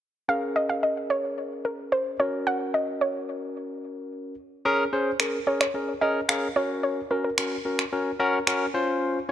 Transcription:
0.28 tine electric piano C#4 G#4 A#4, synth pluck F5
0.56 synth pluck D#5
0.69 synth pluck F5
0.83 synth pluck D#5
1.10 synth pluck C#5
1.65 synth pluck A#4
1.92 synth pluck C5
2.19 tine electric piano C#4 F#4 A#4, synth pluck C#5
2.47 synth pluck F#5
2.74 synth pluck D#5
3.01 synth pluck C#5
4.65 tine electric piano C#4 G#4 A#4
4.92 tine electric piano C#4 G#4 C5
5.20 tine electric piano C#4 G#4 A#4, synth pluck A#4, finger snap
5.47 tine electric piano C#4 G#4 A#4, synth pluck C#5
5.61 synth pluck C#5, finger snap
5.74 tine electric piano C#4 G#4 A#4
6.01 tine electric piano C#4 G#4 A#4, synth pluck D#5
6.29 tine electric piano C#4 G#4 A#4, synth pluck F5, finger snap
6.56 tine electric piano C#4 F#4 A#4, synth pluck C#5
6.83 synth pluck C#5
7.10 tine electric piano C#4 F#4 A#4, synth pluck A#4
7.24 synth pluck A#4
7.38 tine electric piano C#4 F#4 A#4, finger snap
7.65 tine electric piano C#4 F#4 A#4
7.79 finger snap
7.92 tine electric piano C#4 F#4 A#4
8.19 tine electric piano C#4 F#4 A#4
8.47 tine electric piano C#4 F#4 A#4, finger snap
8.74 tine electric piano C#4 F4 C5
9.29 tine electric piano C#4

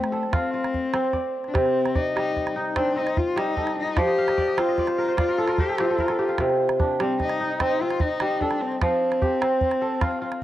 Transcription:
Already playing: kora F3 C4 G4, cello A3
0.04 calabash click
0.12 kora A4, calabash click
0.23 calabash click
0.33 cello C4, kora F4, calabash thump, calabash click
0.53 kora F4
0.64 calabash click
0.74 calabash thump
0.93 kora C4, calabash click
1.05 calabash click
1.13 kora D5, calabash thump, calabash click
1.44 cello D4, calabash click
1.54 kora C3, cello C4, calabash thump, calabash click
1.65 calabash click
1.86 calabash click
1.95 cello D#4, kora D5, calabash thump, calabash click
2.16 kora G3, calabash click
2.37 calabash thump, calabash click
2.47 calabash click
2.56 kora D#4
2.76 kora C4, cello D4, calabash thump, calabash click
2.96 kora C4, cello D#4
3.07 calabash click
3.17 cello F4, calabash thump, calabash click
3.36 kora G3, cello D#4, calabash click
3.57 kora A4, calabash thump
3.67 calabash click
3.79 cello D#4
3.88 calabash click
3.97 kora F3 D5, cello G4, calabash thump, calabash click
4.08 kora D#5, calabash click
4.18 kora F5
4.28 kora D#5, calabash click
4.38 kora D5, calabash thump, calabash click
4.48 kora D#5
4.57 kora C4 F5, cello F4, calabash click
4.69 kora D#5
4.78 kora D5, calabash thump, calabash click
4.87 kora C5, calabash click
4.98 kora A#4
5.08 kora C5
5.17 kora F4 D5, cello F4, calabash thump, calabash click
5.29 kora A#4
5.38 kora A4
5.48 kora A#4, calabash click
5.58 cello G4, kora C5, calabash thump, calabash click
5.69 kora A4
5.78 kora C4 G4, cello F4, calabash click
5.90 kora A4
5.99 kora A#4, calabash thump
6.08 kora A4, calabash click
6.19 kora G4
6.28 kora F4, calabash click
6.38 kora C3, calabash thump, calabash click
6.49 calabash click
6.69 calabash click
6.79 kora D4, calabash thump, calabash click
7.00 kora G3, cello C4, calabash click
7.20 cello D#4, calabash thump, calabash click
7.29 calabash click
7.40 kora D#4
7.60 kora C4, cello D#4, calabash thump, calabash click
7.81 kora C4, cello F4
7.90 calabash click
8.00 cello D#4, calabash thump, calabash click
8.20 kora G3, calabash click
8.41 cello D4, kora A4, calabash thump
8.51 calabash click
8.61 cello C4
8.72 calabash click
8.81 kora F3, cello C4, calabash thump, calabash click
9.11 calabash click
9.21 kora G4, calabash thump
9.41 kora C4, calabash click
9.61 calabash thump
9.71 calabash click
9.81 kora A4
10.01 kora F4, calabash thump, calabash click
10.11 calabash click
10.22 kora F4
10.32 calabash click

